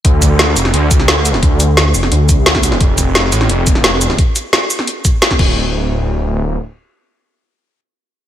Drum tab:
CC |----------------|----------------|----------------|--------------x-|
HH |x-x-x-x-x-x-x-x-|x-x-x-o-x-x-x-x-|x-x-x-x-x-x-x-x-|x-x-x-o-x-x-x---|
SH |--x---x---x---x-|--x---x---x---x-|--x---x---x---x-|--x---x---x-----|
SD |----o--o---oo--o|----o--o----oo-o|----o--o---oo--o|----o--o----oo--|
BD |o-o-------o-----|o---------o--o--|o-o-------o-----|o---------o--oo-|

CC |----------------|----------------|
HH |----------------|----------------|
SH |----------------|----------------|
SD |----------------|----------------|
BD |----------------|----------------|